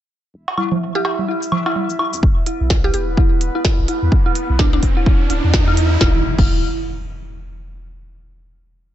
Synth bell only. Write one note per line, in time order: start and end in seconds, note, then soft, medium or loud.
0.57 0.67 E4 medium
0.95 1.00 E4 medium
1.28 1.38 E4 medium
1.66 1.70 E4 loud
1.99 2.09 E4 medium
2.46 2.56 E4 medium
2.84 2.89 E4 medium
3.17 3.27 E4 medium
3.55 3.59 E4 loud
3.88 3.98 E4 medium
4.26 4.30 E4 loud
4.59 4.69 E4 medium
4.97 5.01 E4 loud
5.30 5.40 E4 medium
5.68 5.72 E4 loud
6.01 6.16 E4 loud
6.39 6.61 E4 medium